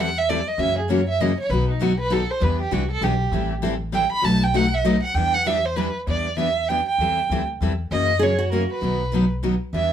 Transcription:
Already playing: upright bass E2
0.00 violin F#5
0.18 violin E5
0.29 steel-string acoustic guitar E3 G3 C4 E4 A4, violin D5
0.48 violin D#5
0.58 upright bass F#2, steel-string acoustic guitar C#3 E3 F#3 A#3 C#4 E4 F#4 A#4, violin E5
0.78 violin G#4
0.88 steel-string acoustic guitar C#3 E3 F#3 A#3 C#4 E4 F#4 A#4, violin C#5
1.09 violin E5
1.20 steel-string acoustic guitar C#3 E3 F#3 A#3 C#4 E4 F#4 A#4, violin D#5
1.40 violin C#5
1.49 upright bass B1, steel-string acoustic guitar B2 D#3 F#3 B3 D#4 F#4 B4, violin B4
1.70 violin D#4
1.80 steel-string acoustic guitar B2 D#3 F#3 B3 D#4 F#4 B4, violin F#4
2.00 violin B4
2.10 steel-string acoustic guitar B2 D#3 F#3 B3 D#4 F#4 B4, violin A4
2.30 violin C5
2.40 upright bass E2, steel-string acoustic guitar E3 G3 B3 D4 E4 G4 B4, violin B4
2.61 violin G4
2.71 upright bass C2, steel-string acoustic guitar E3 G3 B3 D4 E4 G4 B4, violin F#4
2.91 violin A4
3.01 upright bass B1, steel-string acoustic guitar E3 G3 B3 D4 E4 G4 B4, violin G4
3.32 upright bass A1, steel-string acoustic guitar E3 G3 C4 E4 A4
3.65 steel-string acoustic guitar E3 G3 C4 E4 A4
3.94 steel-string acoustic guitar E3 G3 C4 E4 A4, violin G5
4.12 violin B5
4.21 upright bass B1, steel-string acoustic guitar B2 A3, violin A5
4.26 steel-string acoustic guitar B2 F#3 A3 D#4 F#4 B4
4.43 violin G5
4.54 steel-string acoustic guitar B2 F#3 A3 D#4 F#4 B4, violin F#5
4.74 violin E5
4.85 steel-string acoustic guitar B2 F#3 A3 D#4 F#4 B4, violin D#5
5.02 violin F#5
5.14 upright bass E2, steel-string acoustic guitar E3 G3 B3 D4 E4 G4 B4, violin G5
5.34 violin F#5
5.46 steel-string acoustic guitar E3 G3 B3 D4 E4 G4 B4, violin E5
5.65 violin C5
5.76 steel-string acoustic guitar E3 G3 B3 D4 E4 G4 B4, violin B4
6.07 upright bass E2, steel-string acoustic guitar E3 G3 B3 D4 E4 G4 B4, violin D5
6.38 steel-string acoustic guitar E3 G3 B3 D4 E4 G4 B4, violin E5
6.69 steel-string acoustic guitar E3 G3 B3 D4 E4 G4 B4, violin G5
6.88 violin G5
6.98 upright bass E2, steel-string acoustic guitar E3 G3 C4 E4 A4
7.30 upright bass D2, steel-string acoustic guitar E3 G3 C4 E4 A4
7.61 upright bass E2, steel-string acoustic guitar E3 G3 C4 E4 A4
7.91 upright bass F#2, steel-string acoustic guitar C#3 E3 F#3 A#3 C#4 E4 F#4 A#4, violin D#5
8.19 steel-string acoustic guitar C#3 E3 F#3 A#3 C#4 E4 F#4 G#4 A#4, violin C#5
8.39 steel-string acoustic guitar F#4
8.52 steel-string acoustic guitar C#3 E3 F#3 A#3 C#4 E4 F#4 A#4, violin A#4
8.72 violin B4
8.80 upright bass B1, steel-string acoustic guitar B2 D#3 F#3 B3 D#4 F#4 B4
9.12 steel-string acoustic guitar B2 D#3 F#3 B3 D#4 F#4 B4
9.43 steel-string acoustic guitar B2 D#3 F#3 B3 D#4 F#4 B4
9.73 upright bass E2, steel-string acoustic guitar E3 G3 B3 D4 E4 G4 B4, violin E5

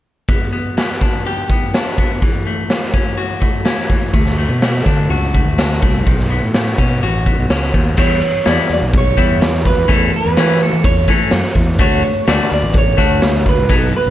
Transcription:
0.28 overdriven electric guitar B3, kick, open hi-hat
0.53 overdriven electric guitar B3
0.77 overdriven electric guitar B3, snare, open hi-hat
1.01 overdriven electric guitar D4, kick
1.25 overdriven electric guitar G4, open hi-hat
1.50 overdriven electric guitar B3, kick
1.74 overdriven electric guitar D4, snare, open hi-hat
1.98 overdriven electric guitar B3, kick
2.22 overdriven electric guitar E3, kick, open hi-hat
2.47 overdriven electric guitar A3
2.70 overdriven electric guitar E3, snare, open hi-hat
2.94 overdriven electric guitar C#4, kick
3.17 overdriven electric guitar F#4, open hi-hat
3.41 overdriven electric guitar A3, kick
3.65 overdriven electric guitar C#4, snare, open hi-hat
3.89 overdriven electric guitar E3, kick
4.13 fingered electric bass D2, overdriven electric guitar A3, kick, open hi-hat
4.26 snare
4.38 overdriven electric guitar A3
4.49 fingered electric bass B2
4.62 overdriven electric guitar A3, snare, open hi-hat
4.86 fingered electric bass D3, overdriven electric guitar D4, kick
5.09 fingered electric bass C#2, overdriven electric guitar F#4, open hi-hat
5.34 overdriven electric guitar A3, kick
5.45 fingered electric bass D2
5.58 overdriven electric guitar D4, snare, open hi-hat
5.82 fingered electric bass C2, overdriven electric guitar A3, kick
6.06 fingered electric bass B1, overdriven electric guitar D#3, kick, open hi-hat
6.19 snare
6.30 overdriven electric guitar B3
6.43 fingered electric bass A2
6.54 overdriven electric guitar D#3, snare, open hi-hat
6.78 fingered electric bass B2, overdriven electric guitar C#4, kick
7.03 fingered electric bass A1, overdriven electric guitar F#4, open hi-hat
7.26 overdriven electric guitar B3, kick
7.38 fingered electric bass B1
7.50 fingered electric bass C#2, overdriven electric guitar C#4, snare, open hi-hat
7.74 fingered electric bass D#2, overdriven electric guitar D#3, kick
7.97 fingered electric bass E2, overdriven electric guitar G3 B3 E4, clean electric guitar C#5, kick, crash
8.21 overdriven electric guitar G3 B3, open hi-hat
8.45 fingered electric bass E2, overdriven electric guitar G3 B3 E4, clean electric guitar D5, snare, open hi-hat
8.69 fingered electric bass E2, overdriven electric guitar G3 B3, clean electric guitar D5, open hi-hat
8.82 fingered electric bass B1
8.93 overdriven electric guitar G3 B3, kick, open hi-hat
8.98 clean electric guitar C#5
9.17 fingered electric bass E2, overdriven electric guitar G3 B3 E4, kick, open hi-hat
9.41 overdriven electric guitar G3 B3, snare, open hi-hat
9.65 overdriven electric guitar G3 B3, clean electric guitar B4, kick, open hi-hat
9.77 fingered electric bass E2
9.88 fingered electric bass E2, overdriven electric guitar E3 A3 C#4, clean electric guitar A4, kick, open hi-hat
10.13 overdriven electric guitar E3 A3, clean electric guitar B4, open hi-hat
10.25 fingered electric bass E2
10.37 overdriven electric guitar E3 A3 C#4, fingered electric bass E3, snare, open hi-hat
10.60 overdriven electric guitar E3 A3, clean electric guitar A4, open hi-hat
10.73 fingered electric bass E3
10.84 fingered electric bass E2, overdriven electric guitar E3 A3, clean electric guitar C#5, kick, open hi-hat
11.07 overdriven electric guitar E3 A3 C#4, clean electric guitar A4, kick, open hi-hat
11.31 fingered electric bass F#2, overdriven electric guitar E3 A3, snare, open hi-hat
11.55 fingered electric bass E2, overdriven electric guitar E3 A3, kick, open hi-hat
11.78 fingered electric bass D2, overdriven electric guitar A3 D4 F#4, clean electric guitar C#5, kick, open hi-hat
12.03 overdriven electric guitar A3 D4, open hi-hat
12.27 fingered electric bass D2, overdriven electric guitar A3 D4 F#4, clean electric guitar D5, snare, open hi-hat
12.50 fingered electric bass D2, overdriven electric guitar A3 D4, clean electric guitar D5, open hi-hat
12.63 fingered electric bass A1
12.73 overdriven electric guitar A3 D4, kick, open hi-hat
12.78 clean electric guitar C#5
12.97 fingered electric bass D2, overdriven electric guitar A3 D4 F#4, kick, open hi-hat
13.22 overdriven electric guitar A3 D4, snare, open hi-hat
13.46 overdriven electric guitar A3 D4, clean electric guitar B4, kick, open hi-hat
13.58 fingered electric bass C#2
13.69 fingered electric bass B1, overdriven electric guitar F#3 B3 D#4, clean electric guitar A4, kick, open hi-hat
13.93 overdriven electric guitar F#3 B3, clean electric guitar B4, open hi-hat
14.06 fingered electric bass B1

